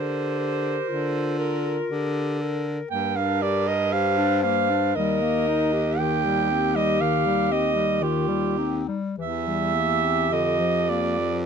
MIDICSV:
0, 0, Header, 1, 5, 480
1, 0, Start_track
1, 0, Key_signature, -2, "major"
1, 0, Tempo, 1018676
1, 1375, Time_signature, 3, 2, 24, 8
1, 3777, Tempo, 1147228
1, 5218, End_track
2, 0, Start_track
2, 0, Title_t, "Alto saxophone"
2, 0, Program_c, 0, 65
2, 0, Note_on_c, 0, 72, 99
2, 652, Note_off_c, 0, 72, 0
2, 655, Note_on_c, 0, 70, 92
2, 889, Note_off_c, 0, 70, 0
2, 1371, Note_on_c, 0, 79, 107
2, 1490, Note_on_c, 0, 77, 110
2, 1497, Note_off_c, 0, 79, 0
2, 1613, Note_on_c, 0, 74, 106
2, 1620, Note_off_c, 0, 77, 0
2, 1734, Note_on_c, 0, 75, 116
2, 1742, Note_off_c, 0, 74, 0
2, 1849, Note_on_c, 0, 77, 117
2, 1856, Note_off_c, 0, 75, 0
2, 2084, Note_off_c, 0, 77, 0
2, 2087, Note_on_c, 0, 77, 116
2, 2335, Note_on_c, 0, 75, 107
2, 2342, Note_off_c, 0, 77, 0
2, 2821, Note_on_c, 0, 79, 114
2, 2828, Note_off_c, 0, 75, 0
2, 3185, Note_on_c, 0, 75, 115
2, 3192, Note_off_c, 0, 79, 0
2, 3302, Note_on_c, 0, 77, 113
2, 3309, Note_off_c, 0, 75, 0
2, 3543, Note_on_c, 0, 75, 114
2, 3550, Note_off_c, 0, 77, 0
2, 3782, Note_on_c, 0, 67, 109
2, 3788, Note_off_c, 0, 75, 0
2, 4139, Note_off_c, 0, 67, 0
2, 4273, Note_on_c, 0, 76, 111
2, 4743, Note_on_c, 0, 75, 117
2, 4749, Note_off_c, 0, 76, 0
2, 4981, Note_on_c, 0, 74, 108
2, 4987, Note_off_c, 0, 75, 0
2, 5218, Note_off_c, 0, 74, 0
2, 5218, End_track
3, 0, Start_track
3, 0, Title_t, "Clarinet"
3, 0, Program_c, 1, 71
3, 0, Note_on_c, 1, 67, 76
3, 417, Note_on_c, 1, 65, 81
3, 424, Note_off_c, 1, 67, 0
3, 902, Note_on_c, 1, 67, 78
3, 909, Note_off_c, 1, 65, 0
3, 1137, Note_off_c, 1, 67, 0
3, 1141, Note_on_c, 1, 69, 80
3, 1291, Note_off_c, 1, 69, 0
3, 1373, Note_on_c, 1, 70, 98
3, 1851, Note_on_c, 1, 72, 100
3, 1858, Note_off_c, 1, 70, 0
3, 2334, Note_on_c, 1, 70, 102
3, 2341, Note_off_c, 1, 72, 0
3, 2822, Note_off_c, 1, 70, 0
3, 2825, Note_on_c, 1, 67, 100
3, 3782, Note_on_c, 1, 65, 90
3, 3788, Note_off_c, 1, 67, 0
3, 4015, Note_on_c, 1, 63, 75
3, 4021, Note_off_c, 1, 65, 0
3, 4178, Note_off_c, 1, 63, 0
3, 4265, Note_on_c, 1, 67, 93
3, 5218, Note_off_c, 1, 67, 0
3, 5218, End_track
4, 0, Start_track
4, 0, Title_t, "Clarinet"
4, 0, Program_c, 2, 71
4, 0, Note_on_c, 2, 70, 52
4, 178, Note_off_c, 2, 70, 0
4, 184, Note_on_c, 2, 70, 64
4, 650, Note_off_c, 2, 70, 0
4, 654, Note_on_c, 2, 70, 72
4, 1122, Note_off_c, 2, 70, 0
4, 1130, Note_on_c, 2, 70, 66
4, 1369, Note_off_c, 2, 70, 0
4, 1372, Note_on_c, 2, 58, 59
4, 1491, Note_on_c, 2, 62, 68
4, 1498, Note_off_c, 2, 58, 0
4, 1613, Note_on_c, 2, 67, 71
4, 1620, Note_off_c, 2, 62, 0
4, 1731, Note_on_c, 2, 70, 71
4, 1739, Note_off_c, 2, 67, 0
4, 1852, Note_on_c, 2, 67, 72
4, 1859, Note_off_c, 2, 70, 0
4, 1969, Note_on_c, 2, 62, 81
4, 1976, Note_off_c, 2, 67, 0
4, 2094, Note_on_c, 2, 58, 79
4, 2101, Note_off_c, 2, 62, 0
4, 2216, Note_on_c, 2, 62, 69
4, 2223, Note_off_c, 2, 58, 0
4, 2337, Note_off_c, 2, 62, 0
4, 2345, Note_on_c, 2, 55, 74
4, 2459, Note_on_c, 2, 58, 73
4, 2466, Note_off_c, 2, 55, 0
4, 2581, Note_on_c, 2, 63, 83
4, 2588, Note_off_c, 2, 58, 0
4, 2701, Note_on_c, 2, 67, 80
4, 2708, Note_off_c, 2, 63, 0
4, 2820, Note_off_c, 2, 67, 0
4, 2823, Note_on_c, 2, 51, 69
4, 2947, Note_on_c, 2, 55, 65
4, 2954, Note_off_c, 2, 51, 0
4, 3067, Note_on_c, 2, 60, 74
4, 3074, Note_off_c, 2, 55, 0
4, 3183, Note_on_c, 2, 55, 70
4, 3190, Note_off_c, 2, 60, 0
4, 3304, Note_on_c, 2, 51, 75
4, 3311, Note_off_c, 2, 55, 0
4, 3421, Note_on_c, 2, 55, 75
4, 3428, Note_off_c, 2, 51, 0
4, 3538, Note_on_c, 2, 60, 74
4, 3545, Note_off_c, 2, 55, 0
4, 3650, Note_on_c, 2, 55, 67
4, 3657, Note_off_c, 2, 60, 0
4, 3775, Note_on_c, 2, 51, 80
4, 3782, Note_off_c, 2, 55, 0
4, 3890, Note_on_c, 2, 55, 71
4, 3896, Note_off_c, 2, 51, 0
4, 4012, Note_on_c, 2, 60, 76
4, 4018, Note_off_c, 2, 55, 0
4, 4139, Note_on_c, 2, 55, 70
4, 4145, Note_off_c, 2, 60, 0
4, 4260, Note_off_c, 2, 55, 0
4, 4263, Note_on_c, 2, 52, 59
4, 4386, Note_on_c, 2, 55, 59
4, 4392, Note_off_c, 2, 52, 0
4, 4498, Note_on_c, 2, 58, 67
4, 4504, Note_off_c, 2, 55, 0
4, 4621, Note_on_c, 2, 60, 66
4, 4627, Note_off_c, 2, 58, 0
4, 4736, Note_off_c, 2, 60, 0
4, 4739, Note_on_c, 2, 50, 68
4, 4858, Note_on_c, 2, 53, 71
4, 4864, Note_off_c, 2, 50, 0
4, 4981, Note_on_c, 2, 58, 65
4, 4988, Note_off_c, 2, 53, 0
4, 5104, Note_on_c, 2, 53, 67
4, 5110, Note_off_c, 2, 58, 0
4, 5218, Note_off_c, 2, 53, 0
4, 5218, End_track
5, 0, Start_track
5, 0, Title_t, "Baritone saxophone"
5, 0, Program_c, 3, 67
5, 0, Note_on_c, 3, 50, 78
5, 364, Note_off_c, 3, 50, 0
5, 421, Note_on_c, 3, 50, 83
5, 839, Note_off_c, 3, 50, 0
5, 895, Note_on_c, 3, 50, 88
5, 1318, Note_off_c, 3, 50, 0
5, 1374, Note_on_c, 3, 43, 85
5, 2317, Note_off_c, 3, 43, 0
5, 2337, Note_on_c, 3, 39, 90
5, 4121, Note_off_c, 3, 39, 0
5, 4265, Note_on_c, 3, 40, 82
5, 4738, Note_on_c, 3, 41, 84
5, 4744, Note_off_c, 3, 40, 0
5, 5218, Note_off_c, 3, 41, 0
5, 5218, End_track
0, 0, End_of_file